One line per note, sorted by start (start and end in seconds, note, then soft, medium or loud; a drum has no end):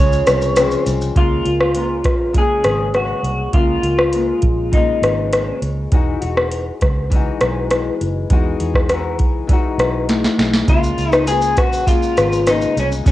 0.00 0.21 C#2 loud
0.00 0.54 C#3 medium
0.00 0.56 F3 medium
0.00 0.58 G#3 medium
0.00 0.59 C#4 medium
0.00 0.87 C#5 loud
0.12 shaker soft
0.27 0.74 C2 medium
0.27 cross-stick medium
0.27 closed hi-hat medium
0.27 shaker medium
0.42 shaker soft
0.56 1.14 C#3 medium
0.56 1.16 F3 medium
0.56 1.17 G#3 medium
0.56 1.17 C4 medium
0.56 cross-stick medium
0.56 closed hi-hat medium
0.56 shaker medium
0.71 shaker soft
0.86 1.10 C2 loud
0.86 closed hi-hat soft
0.86 shaker soft
1.01 shaker soft
1.15 1.40 C#2 loud
1.15 1.45 C#3 medium
1.15 1.46 G#3 medium
1.15 1.45 A#3 medium
1.15 2.38 F4 medium
1.15 1.43 F4 medium
1.15 kick loud
1.15 closed hi-hat medium
1.44 2.05 C#2 medium
1.44 1.74 G#3 soft
1.44 1.75 A#3 soft
1.44 1.75 F4 soft
1.44 closed hi-hat soft
1.61 cross-stick medium
1.73 2.32 C#3 soft
1.73 2.35 G#3 medium
1.73 2.35 A#3 soft
1.73 closed hi-hat medium
1.77 2.36 F4 medium
2.04 2.53 A#1 medium
2.04 kick medium
2.04 cross-stick medium
2.04 closed hi-hat soft
2.33 3.52 C#3 medium
2.33 3.54 G#3 medium
2.33 3.54 A#3 medium
2.33 kick medium
2.33 closed hi-hat medium
2.38 2.92 G#4 medium
2.64 3.12 G#1 medium
2.64 cross-stick medium
2.64 closed hi-hat medium
2.94 3.54 F#4 medium
2.94 cross-stick medium
2.94 closed hi-hat medium
3.23 3.48 C2 medium
3.23 closed hi-hat soft
3.53 3.77 C#2 medium
3.53 3.83 C#3 medium
3.53 3.84 G#3 medium
3.53 3.83 A#3 medium
3.53 4.77 F4 medium
3.53 3.81 F4 medium
3.53 kick loud
3.53 closed hi-hat medium
3.82 4.31 C#2 medium
3.82 4.13 G#3 soft
3.82 4.14 A#3 soft
3.82 4.13 F4 soft
3.82 closed hi-hat soft
3.99 cross-stick medium
4.13 4.70 C#3 medium
4.13 4.74 G#3 medium
4.13 4.74 A#3 medium
4.13 4.75 F4 medium
4.13 closed hi-hat medium
4.42 4.91 A#1 medium
4.42 kick medium
4.42 closed hi-hat soft
4.72 5.91 C#3 medium
4.72 5.92 G#3 medium
4.72 5.93 A#3 medium
4.72 5.59 D#4 medium
4.72 kick medium
4.72 closed hi-hat medium
4.77 5.94 F4 medium
5.02 5.50 G#1 medium
5.02 cross-stick medium
5.02 closed hi-hat medium
5.33 cross-stick medium
5.33 closed hi-hat medium
5.62 5.86 C#2 medium
5.62 closed hi-hat soft
5.92 6.16 E1 medium
5.92 6.22 E3 medium
5.92 6.22 G#3 medium
5.92 6.22 D#4 medium
5.92 6.20 F#4 medium
5.92 kick loud
5.92 closed hi-hat medium
6.21 6.70 E1 medium
6.21 7.12 D#4 soft
6.21 7.11 F#4 medium
6.21 closed hi-hat soft
6.25 7.12 G#3 soft
6.37 cross-stick medium
6.51 closed hi-hat medium
6.81 7.29 C#2 medium
6.81 kick medium
6.81 cross-stick medium
6.81 closed hi-hat soft
7.10 8.28 E3 medium
7.10 8.30 G#3 medium
7.10 kick medium
7.10 closed hi-hat medium
7.14 8.30 D#4 medium
7.14 8.31 F#4 medium
7.41 7.89 B1 medium
7.41 cross-stick medium
7.41 closed hi-hat medium
7.70 cross-stick medium
7.70 closed hi-hat medium
8.01 8.25 F#1 medium
8.01 closed hi-hat soft
8.30 8.54 E2 medium
8.30 8.87 E3 medium
8.30 8.90 G#3 medium
8.30 8.90 D#4 medium
8.30 8.91 F#4 medium
8.30 kick loud
8.30 closed hi-hat medium
8.60 9.20 E2 medium
8.60 closed hi-hat soft
8.74 kick medium
8.74 cross-stick medium
8.89 9.46 E3 medium
8.89 9.49 G#3 medium
8.89 9.50 D#4 medium
8.89 cross-stick medium
8.89 closed hi-hat medium
8.93 9.51 F#4 medium
9.19 9.67 C#2 medium
9.19 kick medium
9.19 closed hi-hat soft
9.47 10.67 E3 medium
9.47 10.68 G#3 medium
9.47 10.68 D#4 medium
9.47 kick medium
9.47 closed hi-hat medium
9.53 10.70 F#4 medium
9.78 10.26 B1 medium
9.78 cross-stick medium
9.78 closed hi-hat medium
10.09 snare soft
10.09 closed hi-hat medium
10.24 snare medium
10.39 10.62 B1 medium
10.39 snare medium
10.39 closed hi-hat soft
10.54 snare medium
10.67 10.92 C#2 loud
10.67 11.25 C#3 medium
10.67 11.27 G#3 medium
10.67 11.27 A#3 medium
10.67 11.12 F4 medium
10.67 11.29 F4 medium
10.67 kick loud
10.67 closed hi-hat medium
10.67 shaker medium
10.84 shaker medium
10.98 11.58 C#2 medium
10.98 closed hi-hat soft
10.98 shaker soft
11.12 11.24 D#4 medium
11.12 cross-stick medium
11.12 shaker soft
11.26 11.85 C#3 medium
11.26 11.87 G#3 soft
11.26 11.88 A#3 medium
11.26 11.88 F4 medium
11.26 11.55 G#4 loud
11.26 closed hi-hat medium
11.26 shaker medium
11.42 shaker medium
11.57 12.05 A#1 medium
11.57 11.87 F#4 loud
11.57 kick medium
11.57 cross-stick medium
11.57 closed hi-hat medium
11.57 shaker soft
11.73 shaker soft
11.86 12.44 C#3 medium
11.86 12.46 G#3 medium
11.86 12.47 A#3 medium
11.86 12.49 F4 medium
11.86 12.48 F4 medium
11.86 kick medium
11.86 closed hi-hat medium
11.86 shaker medium
12.03 shaker soft
12.17 12.65 G#1 medium
12.17 cross-stick medium
12.17 closed hi-hat soft
12.17 shaker medium
12.33 shaker soft
12.46 13.03 C#3 medium
12.46 13.06 G#3 medium
12.46 13.07 A#3 medium
12.46 12.75 D#4 medium
12.46 13.07 F4 medium
12.46 cross-stick medium
12.46 closed hi-hat medium
12.46 shaker medium
12.62 shaker soft
12.77 13.00 C2 medium
12.77 12.87 C#4 medium
12.77 closed hi-hat soft
12.77 shaker soft
12.92 shaker soft
13.04 13.12 C#2 medium
13.04 13.12 C#3 medium
13.04 13.12 G#3 medium
13.04 13.12 C#4 medium
13.04 kick loud
13.04 closed hi-hat medium
13.04 shaker medium
13.08 13.12 A#3 medium